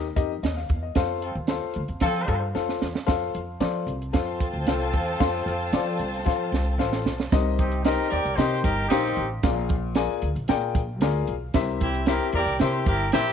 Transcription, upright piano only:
0.16 D#4 G4 A#4 D#5
0.43 D#5
0.57 F5
0.83 D#5
0.96 F4 A4 C5 F5
1.49 F4 A4 C5 F5
2.02 F4 A4 C5 F5
2.28 F4 A4 C5 F5
2.55 F4 A4 C5 F5
3.06 F4 A4 C5 F5
3.60 F4 A4 C5 D5
4.13 F4 A4 C5 F5
4.67 F4 A4 C5 F5
5.20 F4 A4 C5 F5
5.73 F4 A4 C5 D5
6.25 F4 A4 C5 F5
6.79 F4 A4 C5 F5
7.32 C3 D#4 G4 A#4 C5 D#5
7.86 D#4 G4 A#4 C5 D#5
8.38 D#4 G4 A#4 C5 D#5
8.91 D#4 G4 A#4 C5 F5
9.44 A#2 F4 G#4 A#4 D5 F5
9.96 F4 G#4 A#4 D5 G#5
10.49 F4 G#4 A#4 D5 G5
11.02 F4 G#4 A#4 D5 F5
11.55 C3 E4 G4 A#4 C5 E5
12.08 E4 G4 A#4 C5 E5
12.61 E4 G4 A#4 C5 E5
13.13 E4 G4 A#4 C5 E5

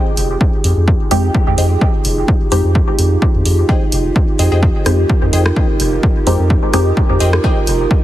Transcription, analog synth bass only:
0.17 F1
0.64 F2
0.77 F2
1.11 F2
1.47 F2
1.58 F2
2.05 F1
2.52 F2
2.64 F2
2.99 F2
3.35 F2
3.45 F2
3.92 F1
4.39 F2
4.52 F2
4.86 F2
5.22 F2
5.33 F2
5.80 F1
6.27 F2
6.39 F2
6.74 F2
7.10 F2
7.20 F2
7.67 F1

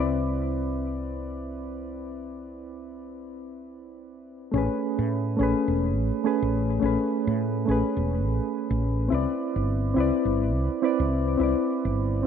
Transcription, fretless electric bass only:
Already playing: C2
4.54 A1
4.99 A2
5.39 A1
5.68 E1
5.97 A1
6.42 A1
6.82 A1
7.27 A2
7.68 A1
7.97 E1
8.26 A1
8.71 A1
9.12 C2
9.56 G1
9.97 C2
10.25 G1
10.54 C2
11.00 C2
11.40 C2
11.85 G1

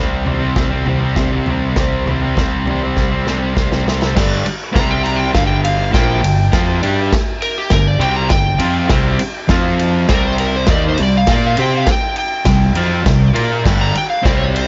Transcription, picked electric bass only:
Already playing: C2
0.27 C2
0.56 C2
0.87 C2
1.17 C2
1.47 C2
1.77 C2
2.06 C2
2.37 C2
2.66 C2
2.97 C2
3.26 C2
3.58 C2
3.85 C2
4.17 G1
4.45 muted picked electric bass stroke
4.75 C2
5.35 G1
5.94 A#1
6.24 G1
6.53 F2
6.84 G2
7.72 G1
8.00 C2
8.31 G1
8.60 F2
8.91 C2
9.20 muted picked electric bass stroke
9.49 F2
10.09 C2
10.68 D#2
11.00 C2
11.27 A#2
11.59 C3
12.45 C2
12.74 F2
13.07 C2
13.34 A#2
13.65 G1
14.25 C2

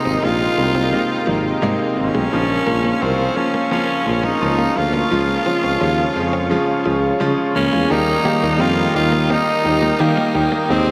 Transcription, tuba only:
0.05 G#1
0.23 A#1
0.58 C2
1.28 G#1
1.63 G#2
1.97 G#1
2.15 B1
2.32 A#1
2.67 A#1
3.02 C2
4.06 A#1
4.42 C#2
4.77 D2
5.12 C#2
5.64 C#2
5.81 D#2
6.16 F2
6.86 C#2
7.21 C#3
7.56 C#2
7.73 E2
7.91 D#2
8.43 D#2
8.61 F2
8.95 D#2
9.65 D#2
10.00 D#3
10.35 D#2
10.70 D#2

